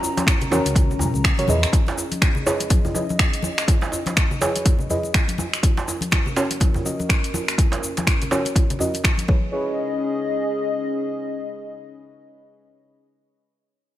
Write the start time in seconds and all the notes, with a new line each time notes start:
Already playing: C#4 F#4 A#4 D#5 A#5
0.03 djembe tone, shaker
0.17 closed hi-hat, djembe slap, high conga, shaker
0.27 finger snap, kick, closed hi-hat, djembe tone, shaker
0.41 closed hi-hat, low conga, shaker
0.51 E2 C#4 F#4 A#4 C#5, djembe slap, djembe tone, high conga, shaker
0.65 C#2, closed hi-hat, muted conga, shaker
0.75 kick, closed hi-hat, djembe tone, djembe bass, shaker
0.91 low conga, shaker
0.99 mid tom, djembe tone, high conga, djembe bass, shaker
1.14 C#2, muted conga, shaker
1.24 C#2, finger snap, kick, closed hi-hat, djembe tone, shaker
1.37 C#4 F#4 A#4 C#5, closed hi-hat, mid tom, high conga, shaker
1.48 E2 E4 G#4 B4 D#5, muted conga, high conga, djembe tone, shaker
1.63 finger snap, closed hi-hat, shaker
1.73 G#4 D#5, kick, closed hi-hat, djembe tone, shaker
1.87 muted conga, djembe slap, shaker
1.98 djembe tone, shaker
2.11 closed hi-hat, high conga, shaker
2.22 finger snap, kick, closed hi-hat, djembe tone, shaker
2.35 low conga, shaker
2.46 E4 G#4 B4 C#5, djembe slap, djembe tone, shaker
2.60 closed hi-hat, muted conga, shaker
2.70 kick, closed hi-hat, high conga, djembe tone, shaker
2.85 low conga, djembe bass, shaker
2.95 E4 G#4 B4 D#5, djembe tone, high conga, shaker
3.09 muted conga, high conga, shaker
3.19 finger snap, kick, closed hi-hat, djembe tone, shaker
3.33 closed hi-hat, shaker
3.42 muted conga, high conga, djembe tone, shaker
3.58 finger snap, closed hi-hat, shaker
3.68 F#4, kick, closed hi-hat, djembe tone, shaker
3.81 muted conga, djembe slap, shaker
3.92 djembe tone, shaker
4.06 closed hi-hat, djembe slap, high conga, shaker
4.17 finger snap, kick, closed hi-hat, djembe tone, shaker
4.31 low conga, shaker
4.41 E4 G#4 B4 C#5, djembe slap, high conga, djembe tone, shaker
4.56 closed hi-hat, muted conga, shaker
4.65 kick, closed hi-hat, djembe tone, djembe bass, shaker
4.79 low conga, shaker
4.90 E4 G#4 B4 D#5, high conga, djembe tone, djembe bass, shaker
5.03 muted conga, shaker
5.14 finger snap, kick, closed hi-hat, djembe tone, shaker
5.28 closed hi-hat, high conga, shaker
5.38 muted conga, high conga, djembe tone, shaker
5.53 finger snap, closed hi-hat, shaker
5.63 C#4 A#4, kick, closed hi-hat, djembe tone, shaker
5.77 muted conga, djembe slap, shaker
5.88 djembe tone, shaker
6.01 closed hi-hat, high conga, shaker
6.11 finger snap, kick, closed hi-hat, muted conga, djembe tone, shaker
6.26 low conga, shaker
6.36 C#4 F#4 A#4 C#5, djembe slap, djembe tone, shaker
6.51 closed hi-hat, muted conga, shaker
6.60 kick, closed hi-hat, high conga, djembe tone, shaker
6.74 low conga, djembe bass, shaker
6.85 C#4 F#4 A#4 D#5, high conga, djembe tone, shaker
6.99 muted conga, high conga, shaker
7.09 finger snap, kick, closed hi-hat, djembe tone, shaker
7.24 closed hi-hat, shaker
7.34 muted conga, high conga, djembe tone, shaker
7.48 finger snap, closed hi-hat, shaker
7.58 kick, closed hi-hat, djembe tone, shaker
7.72 closed hi-hat, djembe slap, muted conga, shaker
7.83 djembe tone, shaker
7.97 closed hi-hat, djembe slap, high conga, shaker
8.07 finger snap, kick, closed hi-hat, muted conga, djembe tone, shaker
8.22 closed hi-hat, low conga, shaker
8.31 C#4 F#4 A#4 C#5, djembe slap, djembe tone, high conga, shaker
8.45 closed hi-hat, muted conga, shaker
8.55 kick, closed hi-hat, djembe tone, djembe bass, shaker
8.70 closed hi-hat, low conga, shaker
8.79 C#4 F#4 A#4 D#5, djembe tone, high conga, djembe bass, shaker
8.94 closed hi-hat, muted conga, shaker
9.04 finger snap, kick, closed hi-hat, djembe tone, shaker
9.18 closed hi-hat, high conga, shaker
9.28 C#4 E4 G#4 B4 C#5 D#5, kick, muted conga, djembe tone, high conga